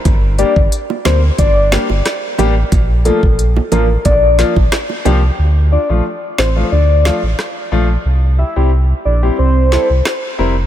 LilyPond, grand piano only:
\new Staff \with { instrumentName = "Grand piano" } { \time 4/4 \key d \minor \tempo 4 = 90 r8 <g bes d' g'>16 r8. <g bes d' bes'>16 r8. <g bes d' g'>16 r8. <g bes d' g'>16 r16 | r8 <f bes d' f'>16 r8. <f bes d' f'>16 r8. <f bes d' f'>16 r8. <f bes d' g'>16 r16 | r8 <d' f'>16 <f a d' f'>16 r8 <d' f'>16 <f a d' f'>16 r8 <f a d' f'>16 r8. <f a d' f'>16 r16 | r8 <e' g'>16 <g c' e' g'>16 r8 <e' a'>16 <g c' e' g'>16 r8 <g c' e' a'>16 r8. <g c' e' bes'>16 r16 | }